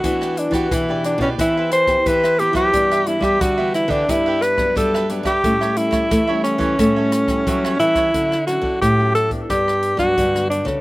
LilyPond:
<<
  \new Staff \with { instrumentName = "Cavaquinho" } { \time 4/4 \key d \major \tempo 4 = 89 <e' g' b' d''>16 <g' b' d''>16 r16 <g' b' d''>16 <e' g' b' d''>16 <g' b' d''>8 <g' b' d''>16 <g' b' c'' e''>16 <b' c'' e''>16 r8 <g' b' c'' e''>16 <b' c'' e''>16 <g' b' c'' e''>16 <b' c'' e''>16 | <d' g' b' e''>16 <g' b' e''>16 r16 <g' b' e''>16 <d' g' b' e''>16 <g' b' e''>8 <g' b' e''>16 <d' g' b' e''>16 <g' b' e''>16 r8 <d' g' b' e''>16 <g' b' e''>16 <d' g' b' e''>16 <g' b' e''>16 | <g' a' cis'' e''>16 <a' cis'' e''>16 r16 <a' cis'' e''>16 <g' a' cis'' e''>16 <a' cis'' e''>8 <a' cis'' e''>16 <g' a' cis'' e''>16 <a' cis'' e''>16 r8 <g' a' cis'' e''>16 <a' cis'' e''>16 <g' a' cis'' e''>16 <a' cis'' e''>16 | r1 | }
  \new Staff \with { instrumentName = "Alto saxophone" } { \time 4/4 \key d \major fis'8 d'16 fis'16 e'8 d'16 cis'16 e'8 c''8 b'8 g'16 g'16~ | g'8 e'16 g'16 fis'8 e'16 d'16 e'8 b'8 a'8 r16 g'16~ | g'8 e'4 cis'2 e'8~ | e'8 fis'8 g'8 a'8 g'8. fis'8. d'8 | }
  \new Staff \with { instrumentName = "Nylon-string guitar" } { \time 4/4 \key d \major << { <b d'>8. <b d' g'>8 <b d' g'>8. <b c' g'>8. <b c' g'>8. <b c' g'>8 | <e b d'>8 <e b d'>8 r16 <e b d'>8. <b d'>8. <fis b d'>8. <fis b d'>16 r16 | <g cis' e'>8 <g cis' e'>8 r16 <g cis' e'>8. <g cis' e'>8. <g cis' e'>8. <g cis' e'>8 | <fis cis' e'>16 r16 <fis cis' e'>8. <fis cis' e'>8 <b d'>4 <fis b d'>8 <fis b d'>8 <cis' d' a'>16 | } \\ { e4 b,4 e4 e4 | g,4 d4 g,4 g,4 | a,4 e4 a,4 e4 | d4 a,4 g,4 d4 | } >> }
  \new Staff \with { instrumentName = "Nylon-string guitar" } { \clef bass \time 4/4 \key d \major e8. e16 e8. b,16 e4 e8. fis16 | g8. g16 g8. d16 g4 g8. g16 | a8. a16 a8. e16 a4 fis8 e8 | d8. d16 a,4 g,8. g,16 g,8. cis16 | }
  \new DrumStaff \with { instrumentName = "Drums" } \drummode { \time 4/4 <hh bd>16 ss16 hh16 <hh bd ss>16 <hh bd ss>8 <hh ss>16 <hh bd>16 <hh bd ss>8 <hh ss>16 <hh bd ss>16 <hh bd>16 ss16 hh16 <hh bd ss>16 | <hh bd>16 <hh ss>16 hh16 <bd ss>16 <hh bd ss>8 <hh ss>16 <hh bd>16 <hh bd ss>8 <hh ss>16 <bd ss>16 <hh bd>16 ss16 hh16 <hh bd ss>16 | <hh bd>16 ss16 hh16 <hh bd ss>16 <hh bd ss>8 <hh ss>16 <hh bd>16 <hh bd ss>8 <hh ss>16 <hh bd ss>16 <hh bd>16 ss16 hh16 <hh bd ss>16 | <hh bd>16 ss16 <hh ss>16 bd16 <hh bd ss>8 <hh ss>16 <hh bd>16 <hh bd ss>16 ss16 hh16 <hh bd ss>16 <hh bd>16 <hh ss>16 hh16 <bd ss>16 | }
>>